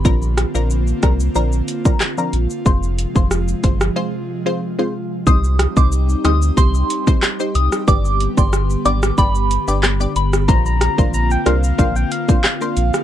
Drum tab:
HH |--x---x---x---x-|--x---x---------|--x---x---x---x-|--x---x---x---x-|
SH |xxxxxxxxxxxxxxxx|xxxxxxxx--------|xxxxxxxxxxxxxxxx|xxxxxxxxxxxxxxxx|
CP |------------x---|----------------|------------x---|------------x---|
SD |--r---r-----r---|----r--r--------|--r---r-----r--r|----r--r----r--r|
BD |o-----o----o----|o--o--o---------|o--o----o--o----|o--o----o-------|

HH |--x---x---x---x-|
SH |xxxxxxxxxxxxxxxx|
CP |------------x---|
SD |--r---r-----r--r|
BD |o--o----o--o----|